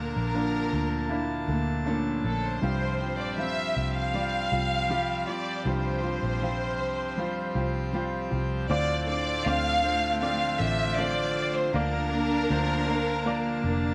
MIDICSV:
0, 0, Header, 1, 7, 480
1, 0, Start_track
1, 0, Tempo, 759494
1, 1660, Time_signature, 4, 2, 24, 8
1, 8813, End_track
2, 0, Start_track
2, 0, Title_t, "Violin section"
2, 0, Program_c, 0, 48
2, 0, Note_on_c, 0, 70, 70
2, 919, Note_off_c, 0, 70, 0
2, 1425, Note_on_c, 0, 69, 68
2, 1534, Note_off_c, 0, 69, 0
2, 1546, Note_on_c, 0, 72, 75
2, 2019, Note_on_c, 0, 74, 70
2, 2023, Note_off_c, 0, 72, 0
2, 2134, Note_on_c, 0, 76, 90
2, 2140, Note_off_c, 0, 74, 0
2, 2472, Note_off_c, 0, 76, 0
2, 2506, Note_on_c, 0, 77, 90
2, 3334, Note_on_c, 0, 74, 78
2, 3343, Note_off_c, 0, 77, 0
2, 3577, Note_off_c, 0, 74, 0
2, 3584, Note_on_c, 0, 72, 77
2, 5022, Note_off_c, 0, 72, 0
2, 5498, Note_on_c, 0, 74, 93
2, 5722, Note_off_c, 0, 74, 0
2, 5736, Note_on_c, 0, 74, 89
2, 5961, Note_off_c, 0, 74, 0
2, 5979, Note_on_c, 0, 77, 111
2, 6447, Note_off_c, 0, 77, 0
2, 6455, Note_on_c, 0, 77, 98
2, 6680, Note_off_c, 0, 77, 0
2, 6698, Note_on_c, 0, 76, 96
2, 6934, Note_on_c, 0, 74, 93
2, 6939, Note_off_c, 0, 76, 0
2, 7296, Note_on_c, 0, 72, 82
2, 7297, Note_off_c, 0, 74, 0
2, 7413, Note_on_c, 0, 70, 93
2, 7418, Note_off_c, 0, 72, 0
2, 8813, Note_off_c, 0, 70, 0
2, 8813, End_track
3, 0, Start_track
3, 0, Title_t, "Grand piano"
3, 0, Program_c, 1, 0
3, 0, Control_c, 1, 64, 127
3, 0, Note_on_c, 1, 50, 48
3, 0, Note_on_c, 1, 58, 54
3, 0, Note_on_c, 1, 62, 49
3, 0, Note_on_c, 1, 70, 62
3, 196, Note_off_c, 1, 58, 0
3, 198, Note_off_c, 1, 62, 0
3, 200, Note_off_c, 1, 70, 0
3, 219, Note_on_c, 1, 58, 55
3, 222, Note_on_c, 1, 62, 53
3, 223, Note_on_c, 1, 70, 60
3, 437, Note_off_c, 1, 50, 0
3, 675, Note_off_c, 1, 58, 0
3, 677, Note_off_c, 1, 62, 0
3, 678, Note_off_c, 1, 70, 0
3, 690, Note_on_c, 1, 58, 69
3, 696, Note_on_c, 1, 62, 63
3, 699, Note_on_c, 1, 64, 75
3, 1151, Note_off_c, 1, 58, 0
3, 1154, Note_off_c, 1, 62, 0
3, 1155, Note_off_c, 1, 64, 0
3, 1172, Note_on_c, 1, 57, 65
3, 1178, Note_on_c, 1, 61, 50
3, 1182, Note_on_c, 1, 69, 72
3, 1219, Note_on_c, 1, 62, 59
3, 1220, Note_off_c, 1, 61, 0
3, 1632, Note_off_c, 1, 57, 0
3, 1637, Note_off_c, 1, 69, 0
3, 1653, Note_on_c, 1, 55, 57
3, 1655, Note_off_c, 1, 62, 0
3, 1657, Note_on_c, 1, 43, 51
3, 1661, Note_on_c, 1, 65, 52
3, 1663, Note_on_c, 1, 72, 63
3, 1667, Control_c, 1, 64, 0
3, 1793, Control_c, 1, 64, 127
3, 2112, Note_off_c, 1, 55, 0
3, 2116, Note_off_c, 1, 65, 0
3, 2117, Note_off_c, 1, 72, 0
3, 2135, Note_on_c, 1, 55, 58
3, 2140, Note_on_c, 1, 65, 51
3, 2146, Note_on_c, 1, 72, 60
3, 2353, Note_off_c, 1, 43, 0
3, 2594, Note_off_c, 1, 55, 0
3, 2596, Note_off_c, 1, 65, 0
3, 2599, Note_off_c, 1, 72, 0
3, 2617, Note_on_c, 1, 55, 60
3, 2621, Note_on_c, 1, 65, 55
3, 2624, Note_on_c, 1, 74, 64
3, 3074, Note_off_c, 1, 55, 0
3, 3076, Note_off_c, 1, 65, 0
3, 3078, Note_off_c, 1, 74, 0
3, 3093, Note_on_c, 1, 55, 66
3, 3097, Note_on_c, 1, 65, 65
3, 3102, Note_on_c, 1, 67, 77
3, 3552, Note_off_c, 1, 55, 0
3, 3554, Note_off_c, 1, 65, 0
3, 3557, Note_off_c, 1, 67, 0
3, 3578, Note_on_c, 1, 55, 57
3, 3582, Note_on_c, 1, 43, 49
3, 3583, Note_on_c, 1, 65, 50
3, 3586, Note_on_c, 1, 72, 62
3, 4035, Note_off_c, 1, 55, 0
3, 4037, Note_off_c, 1, 65, 0
3, 4039, Note_off_c, 1, 72, 0
3, 4053, Note_on_c, 1, 55, 54
3, 4060, Note_on_c, 1, 65, 49
3, 4061, Note_on_c, 1, 72, 61
3, 4276, Note_off_c, 1, 43, 0
3, 4513, Note_off_c, 1, 55, 0
3, 4516, Note_off_c, 1, 65, 0
3, 4516, Note_off_c, 1, 72, 0
3, 4535, Note_on_c, 1, 55, 65
3, 4542, Note_on_c, 1, 65, 61
3, 4546, Note_on_c, 1, 72, 74
3, 4993, Note_off_c, 1, 55, 0
3, 4997, Note_off_c, 1, 65, 0
3, 4999, Note_off_c, 1, 72, 0
3, 5012, Note_on_c, 1, 55, 60
3, 5017, Note_on_c, 1, 65, 60
3, 5023, Note_on_c, 1, 72, 71
3, 5472, Note_off_c, 1, 55, 0
3, 5475, Note_off_c, 1, 65, 0
3, 5477, Note_off_c, 1, 72, 0
3, 5496, Note_on_c, 1, 60, 89
3, 5499, Note_on_c, 1, 65, 78
3, 5501, Note_on_c, 1, 45, 59
3, 5503, Note_on_c, 1, 74, 94
3, 5508, Control_c, 1, 64, 0
3, 5621, Control_c, 1, 64, 127
3, 5954, Note_off_c, 1, 60, 0
3, 5955, Note_off_c, 1, 65, 0
3, 5957, Note_off_c, 1, 74, 0
3, 5981, Note_on_c, 1, 60, 69
3, 5985, Note_on_c, 1, 65, 64
3, 5989, Note_on_c, 1, 74, 74
3, 6195, Note_off_c, 1, 45, 0
3, 6208, Note_off_c, 1, 60, 0
3, 6209, Note_off_c, 1, 65, 0
3, 6212, Note_off_c, 1, 74, 0
3, 6218, Note_on_c, 1, 60, 60
3, 6219, Note_on_c, 1, 65, 55
3, 6223, Note_on_c, 1, 72, 72
3, 6447, Note_off_c, 1, 60, 0
3, 6447, Note_off_c, 1, 65, 0
3, 6450, Note_off_c, 1, 72, 0
3, 6456, Note_on_c, 1, 60, 69
3, 6461, Note_on_c, 1, 65, 67
3, 6464, Note_on_c, 1, 74, 78
3, 6914, Note_off_c, 1, 60, 0
3, 6916, Note_off_c, 1, 65, 0
3, 6918, Note_off_c, 1, 74, 0
3, 6937, Note_on_c, 1, 60, 67
3, 6944, Note_on_c, 1, 65, 60
3, 6945, Note_on_c, 1, 77, 75
3, 7394, Note_off_c, 1, 60, 0
3, 7398, Note_off_c, 1, 65, 0
3, 7398, Note_off_c, 1, 77, 0
3, 7419, Note_on_c, 1, 58, 92
3, 7423, Note_on_c, 1, 50, 60
3, 7423, Note_on_c, 1, 70, 78
3, 7427, Control_c, 1, 64, 0
3, 7429, Note_on_c, 1, 74, 94
3, 7550, Control_c, 1, 64, 127
3, 7875, Note_off_c, 1, 58, 0
3, 7877, Note_off_c, 1, 70, 0
3, 7880, Note_off_c, 1, 74, 0
3, 7900, Note_on_c, 1, 58, 68
3, 7903, Note_on_c, 1, 70, 65
3, 7909, Note_on_c, 1, 72, 81
3, 8116, Note_off_c, 1, 50, 0
3, 8127, Note_off_c, 1, 58, 0
3, 8129, Note_off_c, 1, 70, 0
3, 8132, Note_off_c, 1, 72, 0
3, 8137, Note_on_c, 1, 58, 73
3, 8139, Note_on_c, 1, 70, 72
3, 8144, Note_on_c, 1, 77, 79
3, 8366, Note_off_c, 1, 58, 0
3, 8367, Note_off_c, 1, 70, 0
3, 8370, Note_off_c, 1, 77, 0
3, 8378, Note_on_c, 1, 58, 82
3, 8382, Note_on_c, 1, 70, 81
3, 8388, Note_on_c, 1, 74, 96
3, 8813, Note_off_c, 1, 58, 0
3, 8813, Note_off_c, 1, 70, 0
3, 8813, Note_off_c, 1, 74, 0
3, 8813, End_track
4, 0, Start_track
4, 0, Title_t, "Cello section"
4, 0, Program_c, 2, 48
4, 5502, Note_on_c, 2, 57, 103
4, 7396, Note_off_c, 2, 57, 0
4, 7414, Note_on_c, 2, 62, 112
4, 8351, Note_off_c, 2, 62, 0
4, 8382, Note_on_c, 2, 58, 90
4, 8621, Note_off_c, 2, 58, 0
4, 8622, Note_on_c, 2, 62, 108
4, 8813, Note_off_c, 2, 62, 0
4, 8813, End_track
5, 0, Start_track
5, 0, Title_t, "Nylon-string guitar"
5, 0, Program_c, 3, 24
5, 0, Note_on_c, 3, 58, 34
5, 0, Note_on_c, 3, 62, 40
5, 218, Note_off_c, 3, 58, 0
5, 219, Note_off_c, 3, 62, 0
5, 221, Note_on_c, 3, 50, 66
5, 222, Note_on_c, 3, 53, 64
5, 226, Note_on_c, 3, 58, 69
5, 227, Note_on_c, 3, 62, 70
5, 698, Note_off_c, 3, 58, 0
5, 700, Note_off_c, 3, 50, 0
5, 700, Note_off_c, 3, 53, 0
5, 702, Note_on_c, 3, 53, 48
5, 703, Note_off_c, 3, 62, 0
5, 706, Note_on_c, 3, 58, 49
5, 711, Note_on_c, 3, 62, 57
5, 937, Note_off_c, 3, 62, 0
5, 938, Note_on_c, 3, 69, 47
5, 941, Note_off_c, 3, 53, 0
5, 943, Note_off_c, 3, 58, 0
5, 945, Note_on_c, 3, 62, 41
5, 951, Note_on_c, 3, 58, 42
5, 1174, Note_off_c, 3, 58, 0
5, 1176, Note_off_c, 3, 62, 0
5, 1176, Note_on_c, 3, 50, 60
5, 1179, Note_off_c, 3, 69, 0
5, 1180, Note_on_c, 3, 53, 69
5, 1181, Note_on_c, 3, 58, 78
5, 1183, Note_on_c, 3, 62, 67
5, 1186, Note_on_c, 3, 69, 75
5, 1410, Note_off_c, 3, 69, 0
5, 1417, Note_off_c, 3, 62, 0
5, 1417, Note_on_c, 3, 69, 39
5, 1418, Note_off_c, 3, 50, 0
5, 1420, Note_off_c, 3, 53, 0
5, 1420, Note_off_c, 3, 58, 0
5, 1425, Note_on_c, 3, 62, 43
5, 1431, Note_on_c, 3, 58, 34
5, 1652, Note_on_c, 3, 48, 67
5, 1655, Note_on_c, 3, 53, 60
5, 1657, Note_off_c, 3, 58, 0
5, 1658, Note_off_c, 3, 62, 0
5, 1659, Note_off_c, 3, 69, 0
5, 1659, Note_on_c, 3, 60, 69
5, 1661, Note_on_c, 3, 65, 62
5, 1662, Note_on_c, 3, 67, 67
5, 1890, Note_off_c, 3, 67, 0
5, 1896, Note_off_c, 3, 48, 0
5, 1897, Note_off_c, 3, 65, 0
5, 1898, Note_off_c, 3, 53, 0
5, 1898, Note_on_c, 3, 67, 42
5, 1900, Note_off_c, 3, 60, 0
5, 1904, Note_on_c, 3, 65, 35
5, 1912, Note_on_c, 3, 60, 36
5, 2134, Note_off_c, 3, 65, 0
5, 2136, Note_off_c, 3, 60, 0
5, 2138, Note_on_c, 3, 48, 65
5, 2139, Note_off_c, 3, 67, 0
5, 2140, Note_on_c, 3, 53, 63
5, 2142, Note_on_c, 3, 65, 69
5, 2143, Note_on_c, 3, 60, 66
5, 2146, Note_on_c, 3, 67, 70
5, 2617, Note_off_c, 3, 53, 0
5, 2619, Note_off_c, 3, 48, 0
5, 2619, Note_on_c, 3, 53, 45
5, 2620, Note_off_c, 3, 60, 0
5, 2622, Note_on_c, 3, 60, 47
5, 2623, Note_off_c, 3, 67, 0
5, 2624, Note_off_c, 3, 65, 0
5, 2627, Note_on_c, 3, 65, 48
5, 2630, Note_on_c, 3, 67, 56
5, 2849, Note_off_c, 3, 67, 0
5, 2853, Note_off_c, 3, 65, 0
5, 2856, Note_on_c, 3, 67, 43
5, 2859, Note_off_c, 3, 60, 0
5, 2860, Note_off_c, 3, 53, 0
5, 2861, Note_on_c, 3, 65, 38
5, 2867, Note_on_c, 3, 60, 37
5, 3094, Note_off_c, 3, 65, 0
5, 3095, Note_off_c, 3, 60, 0
5, 3096, Note_on_c, 3, 48, 68
5, 3098, Note_off_c, 3, 67, 0
5, 3099, Note_on_c, 3, 53, 75
5, 3101, Note_on_c, 3, 65, 74
5, 3102, Note_on_c, 3, 60, 67
5, 3105, Note_on_c, 3, 67, 70
5, 3326, Note_off_c, 3, 67, 0
5, 3331, Note_off_c, 3, 65, 0
5, 3333, Note_on_c, 3, 67, 42
5, 3337, Note_off_c, 3, 60, 0
5, 3338, Note_off_c, 3, 48, 0
5, 3339, Note_off_c, 3, 53, 0
5, 3339, Note_on_c, 3, 65, 39
5, 3345, Note_on_c, 3, 60, 35
5, 3567, Note_off_c, 3, 60, 0
5, 3570, Note_off_c, 3, 65, 0
5, 3572, Note_off_c, 3, 67, 0
5, 3572, Note_on_c, 3, 48, 55
5, 3575, Note_on_c, 3, 53, 59
5, 3575, Note_on_c, 3, 60, 65
5, 3578, Note_on_c, 3, 65, 67
5, 3579, Note_on_c, 3, 67, 71
5, 3806, Note_off_c, 3, 67, 0
5, 3811, Note_off_c, 3, 65, 0
5, 3813, Note_on_c, 3, 67, 45
5, 3816, Note_off_c, 3, 48, 0
5, 3817, Note_off_c, 3, 53, 0
5, 3817, Note_off_c, 3, 60, 0
5, 3819, Note_on_c, 3, 65, 36
5, 3825, Note_on_c, 3, 60, 35
5, 4050, Note_off_c, 3, 60, 0
5, 4054, Note_off_c, 3, 65, 0
5, 4056, Note_on_c, 3, 48, 63
5, 4057, Note_off_c, 3, 67, 0
5, 4057, Note_on_c, 3, 53, 62
5, 4057, Note_on_c, 3, 60, 66
5, 4061, Note_on_c, 3, 65, 66
5, 4063, Note_on_c, 3, 67, 66
5, 4527, Note_off_c, 3, 53, 0
5, 4529, Note_on_c, 3, 53, 51
5, 4532, Note_off_c, 3, 60, 0
5, 4535, Note_on_c, 3, 60, 52
5, 4536, Note_off_c, 3, 67, 0
5, 4537, Note_off_c, 3, 65, 0
5, 4538, Note_off_c, 3, 48, 0
5, 4539, Note_on_c, 3, 65, 54
5, 4544, Note_on_c, 3, 67, 54
5, 4762, Note_off_c, 3, 67, 0
5, 4769, Note_off_c, 3, 65, 0
5, 4770, Note_on_c, 3, 67, 45
5, 4775, Note_off_c, 3, 53, 0
5, 4776, Note_on_c, 3, 65, 40
5, 4777, Note_off_c, 3, 60, 0
5, 4784, Note_on_c, 3, 60, 39
5, 5008, Note_off_c, 3, 60, 0
5, 5010, Note_off_c, 3, 65, 0
5, 5010, Note_on_c, 3, 48, 59
5, 5011, Note_off_c, 3, 67, 0
5, 5012, Note_on_c, 3, 53, 61
5, 5015, Note_on_c, 3, 60, 62
5, 5018, Note_on_c, 3, 65, 70
5, 5019, Note_on_c, 3, 67, 70
5, 5242, Note_off_c, 3, 67, 0
5, 5250, Note_off_c, 3, 65, 0
5, 5250, Note_on_c, 3, 67, 43
5, 5255, Note_off_c, 3, 48, 0
5, 5255, Note_off_c, 3, 60, 0
5, 5256, Note_off_c, 3, 53, 0
5, 5257, Note_on_c, 3, 65, 38
5, 5262, Note_on_c, 3, 60, 35
5, 5488, Note_off_c, 3, 60, 0
5, 5492, Note_on_c, 3, 53, 76
5, 5493, Note_on_c, 3, 50, 69
5, 5495, Note_off_c, 3, 67, 0
5, 5496, Note_off_c, 3, 65, 0
5, 5496, Note_on_c, 3, 60, 70
5, 5499, Note_on_c, 3, 62, 75
5, 5500, Note_on_c, 3, 69, 77
5, 5724, Note_off_c, 3, 69, 0
5, 5730, Note_off_c, 3, 62, 0
5, 5732, Note_on_c, 3, 69, 47
5, 5736, Note_off_c, 3, 50, 0
5, 5736, Note_off_c, 3, 53, 0
5, 5736, Note_off_c, 3, 60, 0
5, 5737, Note_on_c, 3, 62, 44
5, 5744, Note_on_c, 3, 60, 40
5, 5971, Note_off_c, 3, 60, 0
5, 5972, Note_off_c, 3, 62, 0
5, 5973, Note_on_c, 3, 50, 72
5, 5974, Note_off_c, 3, 69, 0
5, 5976, Note_on_c, 3, 53, 76
5, 5979, Note_on_c, 3, 60, 76
5, 5979, Note_on_c, 3, 62, 80
5, 5981, Note_on_c, 3, 69, 81
5, 6205, Note_off_c, 3, 69, 0
5, 6211, Note_off_c, 3, 62, 0
5, 6213, Note_on_c, 3, 69, 53
5, 6216, Note_off_c, 3, 50, 0
5, 6217, Note_off_c, 3, 60, 0
5, 6218, Note_off_c, 3, 53, 0
5, 6218, Note_on_c, 3, 62, 47
5, 6225, Note_on_c, 3, 60, 38
5, 6444, Note_off_c, 3, 60, 0
5, 6448, Note_on_c, 3, 53, 52
5, 6450, Note_off_c, 3, 62, 0
5, 6452, Note_on_c, 3, 60, 58
5, 6453, Note_off_c, 3, 69, 0
5, 6457, Note_on_c, 3, 62, 58
5, 6460, Note_on_c, 3, 69, 59
5, 6683, Note_off_c, 3, 69, 0
5, 6691, Note_on_c, 3, 69, 51
5, 6692, Note_off_c, 3, 62, 0
5, 6694, Note_off_c, 3, 53, 0
5, 6696, Note_off_c, 3, 60, 0
5, 6699, Note_on_c, 3, 62, 44
5, 6705, Note_on_c, 3, 60, 39
5, 6933, Note_off_c, 3, 60, 0
5, 6933, Note_off_c, 3, 62, 0
5, 6934, Note_on_c, 3, 50, 69
5, 6935, Note_off_c, 3, 69, 0
5, 6937, Note_on_c, 3, 53, 79
5, 6941, Note_on_c, 3, 60, 76
5, 6941, Note_on_c, 3, 62, 77
5, 6943, Note_on_c, 3, 69, 77
5, 7410, Note_off_c, 3, 50, 0
5, 7412, Note_off_c, 3, 53, 0
5, 7413, Note_on_c, 3, 50, 80
5, 7414, Note_on_c, 3, 53, 81
5, 7415, Note_off_c, 3, 60, 0
5, 7415, Note_off_c, 3, 62, 0
5, 7417, Note_on_c, 3, 58, 72
5, 7418, Note_on_c, 3, 62, 79
5, 7436, Note_off_c, 3, 69, 0
5, 7651, Note_off_c, 3, 62, 0
5, 7655, Note_off_c, 3, 58, 0
5, 7656, Note_off_c, 3, 50, 0
5, 7657, Note_off_c, 3, 53, 0
5, 7658, Note_on_c, 3, 62, 51
5, 7662, Note_on_c, 3, 58, 41
5, 7888, Note_off_c, 3, 58, 0
5, 7891, Note_off_c, 3, 62, 0
5, 7892, Note_on_c, 3, 50, 74
5, 7894, Note_on_c, 3, 53, 83
5, 7896, Note_on_c, 3, 58, 85
5, 7898, Note_on_c, 3, 62, 82
5, 8135, Note_off_c, 3, 62, 0
5, 8136, Note_off_c, 3, 50, 0
5, 8137, Note_off_c, 3, 53, 0
5, 8138, Note_off_c, 3, 58, 0
5, 8142, Note_on_c, 3, 62, 48
5, 8147, Note_on_c, 3, 58, 45
5, 8371, Note_off_c, 3, 58, 0
5, 8374, Note_on_c, 3, 53, 65
5, 8377, Note_off_c, 3, 62, 0
5, 8379, Note_on_c, 3, 58, 64
5, 8384, Note_on_c, 3, 62, 70
5, 8617, Note_off_c, 3, 53, 0
5, 8619, Note_off_c, 3, 58, 0
5, 8620, Note_off_c, 3, 62, 0
5, 8628, Note_on_c, 3, 62, 54
5, 8633, Note_on_c, 3, 58, 46
5, 8813, Note_off_c, 3, 58, 0
5, 8813, Note_off_c, 3, 62, 0
5, 8813, End_track
6, 0, Start_track
6, 0, Title_t, "Pipe organ"
6, 0, Program_c, 4, 19
6, 0, Note_on_c, 4, 46, 48
6, 0, Note_on_c, 4, 50, 51
6, 0, Note_on_c, 4, 81, 58
6, 1637, Note_off_c, 4, 81, 0
6, 1639, Note_off_c, 4, 46, 0
6, 1639, Note_off_c, 4, 50, 0
6, 1658, Note_on_c, 4, 67, 59
6, 1659, Note_on_c, 4, 53, 53
6, 1661, Note_on_c, 4, 60, 48
6, 5474, Note_off_c, 4, 53, 0
6, 5474, Note_off_c, 4, 67, 0
6, 5475, Note_off_c, 4, 60, 0
6, 5496, Note_on_c, 4, 60, 58
6, 5496, Note_on_c, 4, 65, 68
6, 5497, Note_on_c, 4, 50, 61
6, 7399, Note_off_c, 4, 60, 0
6, 7399, Note_off_c, 4, 65, 0
6, 7425, Note_on_c, 4, 81, 66
6, 7427, Note_on_c, 4, 58, 59
6, 8813, Note_off_c, 4, 50, 0
6, 8813, Note_off_c, 4, 58, 0
6, 8813, Note_off_c, 4, 81, 0
6, 8813, End_track
7, 0, Start_track
7, 0, Title_t, "Fingered electric bass"
7, 0, Program_c, 5, 33
7, 0, Note_on_c, 5, 38, 80
7, 75, Note_off_c, 5, 38, 0
7, 103, Note_on_c, 5, 34, 64
7, 436, Note_off_c, 5, 34, 0
7, 461, Note_on_c, 5, 38, 65
7, 915, Note_off_c, 5, 38, 0
7, 936, Note_on_c, 5, 38, 73
7, 1393, Note_off_c, 5, 38, 0
7, 1417, Note_on_c, 5, 34, 66
7, 1641, Note_off_c, 5, 34, 0
7, 1659, Note_on_c, 5, 36, 86
7, 2020, Note_off_c, 5, 36, 0
7, 2020, Note_on_c, 5, 34, 69
7, 2355, Note_off_c, 5, 34, 0
7, 2378, Note_on_c, 5, 36, 67
7, 2834, Note_off_c, 5, 36, 0
7, 2855, Note_on_c, 5, 36, 65
7, 3312, Note_off_c, 5, 36, 0
7, 3573, Note_on_c, 5, 36, 79
7, 3911, Note_off_c, 5, 36, 0
7, 3935, Note_on_c, 5, 34, 71
7, 4297, Note_off_c, 5, 34, 0
7, 4297, Note_on_c, 5, 36, 66
7, 4753, Note_off_c, 5, 36, 0
7, 4772, Note_on_c, 5, 36, 65
7, 5231, Note_off_c, 5, 36, 0
7, 5257, Note_on_c, 5, 36, 61
7, 5482, Note_off_c, 5, 36, 0
7, 5497, Note_on_c, 5, 38, 103
7, 5953, Note_off_c, 5, 38, 0
7, 5979, Note_on_c, 5, 38, 97
7, 6674, Note_off_c, 5, 38, 0
7, 6698, Note_on_c, 5, 33, 78
7, 7394, Note_off_c, 5, 33, 0
7, 7420, Note_on_c, 5, 38, 101
7, 7874, Note_off_c, 5, 38, 0
7, 7901, Note_on_c, 5, 38, 90
7, 8595, Note_off_c, 5, 38, 0
7, 8619, Note_on_c, 5, 29, 74
7, 8813, Note_off_c, 5, 29, 0
7, 8813, End_track
0, 0, End_of_file